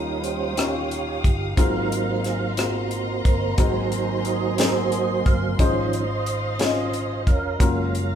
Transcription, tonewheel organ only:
0, 0, Header, 1, 2, 480
1, 0, Start_track
1, 0, Tempo, 669643
1, 1131, Time_signature, 6, 3, 24, 8
1, 5843, End_track
2, 0, Start_track
2, 0, Title_t, "Tonewheel organ"
2, 0, Program_c, 0, 16
2, 0, Note_on_c, 0, 55, 48
2, 0, Note_on_c, 0, 61, 40
2, 0, Note_on_c, 0, 63, 60
2, 0, Note_on_c, 0, 65, 50
2, 0, Note_on_c, 0, 70, 84
2, 122, Note_on_c, 0, 71, 63
2, 140, Note_off_c, 0, 70, 0
2, 142, Note_off_c, 0, 63, 0
2, 168, Note_on_c, 0, 72, 80
2, 172, Note_off_c, 0, 71, 0
2, 379, Note_off_c, 0, 55, 0
2, 381, Note_off_c, 0, 61, 0
2, 383, Note_off_c, 0, 65, 0
2, 412, Note_on_c, 0, 67, 52
2, 416, Note_on_c, 0, 65, 54
2, 416, Note_on_c, 0, 73, 75
2, 417, Note_off_c, 0, 72, 0
2, 865, Note_off_c, 0, 73, 0
2, 1102, Note_off_c, 0, 67, 0
2, 1104, Note_off_c, 0, 65, 0
2, 1121, Note_on_c, 0, 54, 44
2, 1128, Note_on_c, 0, 58, 42
2, 1128, Note_on_c, 0, 60, 41
2, 1129, Note_on_c, 0, 70, 69
2, 1133, Note_on_c, 0, 63, 50
2, 1133, Note_on_c, 0, 77, 48
2, 1580, Note_off_c, 0, 70, 0
2, 1610, Note_on_c, 0, 68, 61
2, 1718, Note_off_c, 0, 68, 0
2, 1816, Note_off_c, 0, 54, 0
2, 1820, Note_off_c, 0, 58, 0
2, 1820, Note_off_c, 0, 60, 0
2, 1822, Note_off_c, 0, 63, 0
2, 1822, Note_off_c, 0, 77, 0
2, 1854, Note_on_c, 0, 58, 46
2, 1855, Note_on_c, 0, 66, 64
2, 1859, Note_on_c, 0, 60, 50
2, 2303, Note_off_c, 0, 66, 0
2, 2331, Note_on_c, 0, 70, 72
2, 2543, Note_off_c, 0, 58, 0
2, 2545, Note_off_c, 0, 60, 0
2, 2563, Note_on_c, 0, 54, 43
2, 2568, Note_on_c, 0, 58, 41
2, 2569, Note_on_c, 0, 63, 54
2, 2572, Note_on_c, 0, 66, 56
2, 2573, Note_on_c, 0, 72, 76
2, 2575, Note_on_c, 0, 60, 51
2, 2577, Note_off_c, 0, 70, 0
2, 3040, Note_off_c, 0, 66, 0
2, 3041, Note_off_c, 0, 72, 0
2, 3049, Note_on_c, 0, 66, 61
2, 3049, Note_on_c, 0, 72, 57
2, 3057, Note_on_c, 0, 75, 81
2, 3260, Note_off_c, 0, 63, 0
2, 3740, Note_off_c, 0, 66, 0
2, 3740, Note_off_c, 0, 72, 0
2, 3770, Note_on_c, 0, 77, 83
2, 3794, Note_off_c, 0, 75, 0
2, 3977, Note_off_c, 0, 54, 0
2, 3979, Note_off_c, 0, 58, 0
2, 3983, Note_off_c, 0, 60, 0
2, 3998, Note_on_c, 0, 53, 42
2, 4000, Note_on_c, 0, 51, 47
2, 4007, Note_on_c, 0, 61, 50
2, 4009, Note_on_c, 0, 72, 58
2, 4011, Note_on_c, 0, 75, 80
2, 4017, Note_off_c, 0, 77, 0
2, 4323, Note_off_c, 0, 53, 0
2, 4324, Note_off_c, 0, 51, 0
2, 4327, Note_off_c, 0, 61, 0
2, 5181, Note_off_c, 0, 72, 0
2, 5182, Note_off_c, 0, 75, 0
2, 5208, Note_on_c, 0, 61, 50
2, 5210, Note_on_c, 0, 70, 87
2, 5210, Note_on_c, 0, 77, 52
2, 5438, Note_on_c, 0, 54, 46
2, 5443, Note_on_c, 0, 56, 45
2, 5447, Note_on_c, 0, 58, 54
2, 5661, Note_off_c, 0, 70, 0
2, 5843, Note_off_c, 0, 54, 0
2, 5843, Note_off_c, 0, 56, 0
2, 5843, Note_off_c, 0, 58, 0
2, 5843, Note_off_c, 0, 61, 0
2, 5843, Note_off_c, 0, 77, 0
2, 5843, End_track
0, 0, End_of_file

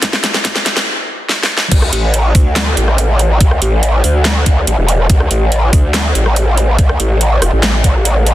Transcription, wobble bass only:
0, 0, Header, 1, 2, 480
1, 0, Start_track
1, 0, Tempo, 422535
1, 28, Time_signature, 4, 2, 24, 8
1, 9475, End_track
2, 0, Start_track
2, 0, Title_t, "Wobble bass"
2, 0, Program_c, 0, 39
2, 1949, Note_on_c, 0, 38, 94
2, 2170, Note_off_c, 0, 38, 0
2, 2188, Note_on_c, 0, 33, 93
2, 2649, Note_off_c, 0, 33, 0
2, 2668, Note_on_c, 0, 38, 98
2, 3129, Note_off_c, 0, 38, 0
2, 3148, Note_on_c, 0, 33, 102
2, 3849, Note_off_c, 0, 33, 0
2, 3868, Note_on_c, 0, 38, 94
2, 4089, Note_off_c, 0, 38, 0
2, 4109, Note_on_c, 0, 33, 98
2, 4570, Note_off_c, 0, 33, 0
2, 4589, Note_on_c, 0, 38, 97
2, 5050, Note_off_c, 0, 38, 0
2, 5069, Note_on_c, 0, 38, 93
2, 5290, Note_off_c, 0, 38, 0
2, 5309, Note_on_c, 0, 33, 102
2, 5411, Note_off_c, 0, 33, 0
2, 5431, Note_on_c, 0, 28, 91
2, 5770, Note_off_c, 0, 28, 0
2, 5788, Note_on_c, 0, 38, 96
2, 6010, Note_off_c, 0, 38, 0
2, 6029, Note_on_c, 0, 33, 92
2, 6490, Note_off_c, 0, 33, 0
2, 6508, Note_on_c, 0, 38, 93
2, 6970, Note_off_c, 0, 38, 0
2, 6988, Note_on_c, 0, 33, 99
2, 7690, Note_off_c, 0, 33, 0
2, 7708, Note_on_c, 0, 38, 96
2, 7929, Note_off_c, 0, 38, 0
2, 7949, Note_on_c, 0, 33, 92
2, 8410, Note_off_c, 0, 33, 0
2, 8429, Note_on_c, 0, 29, 99
2, 8531, Note_off_c, 0, 29, 0
2, 8551, Note_on_c, 0, 33, 100
2, 9475, Note_off_c, 0, 33, 0
2, 9475, End_track
0, 0, End_of_file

